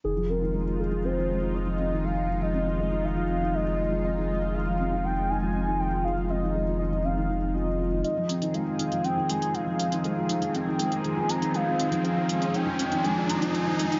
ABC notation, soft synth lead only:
X:1
M:4/4
L:1/16
Q:1/4=120
K:Fm
V:1 name="Soft synth lead"
A2 B4 A2 c4 e4 | f3 e3 e2 f4 e4 | e4 f4 g2 a4 g2 | f2 e4 e2 f4 e4 |
e4 f4 g2 a2 f4 | f4 g4 a2 b2 f4 | f4 g4 a2 b2 a4 |]